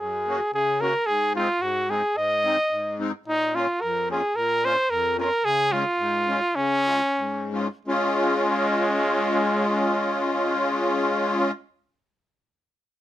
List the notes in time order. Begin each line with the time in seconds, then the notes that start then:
0.00 F#2 G#4
0.27 A#3 C#4 F#4
0.53 C#3 G#4
0.80 A#3 C#4 F#4 A#4
1.06 G#2 G#4
1.36 G#3 C4 D#4 F4
1.60 G#2 F#4
1.89 G#3 C4 D#4 G#4
2.16 G#2 D#5
2.44 G#3 C4 D#4
2.70 G#2
2.99 G#3 C4 D#4
3.25 A#2 D#4
3.55 A#3 C#4 F4
3.81 F2 A#4
4.09 A#3 C#4 F4 G#4
4.36 A#2 A#4
4.64 A#3 C#4 F4 C5
4.90 F2 A#4
5.17 A#3 C#4 F4 A#4
5.45 C#3 G#4
5.72 G#3 C#4 F4
5.98 G#2
6.28 G#3 C#4 F4
6.55 C#3 C#4
6.86 G#3 C#4 F4
7.17 G#2
7.51 G#3 C#4 F4
7.85 G#3 C#4 F4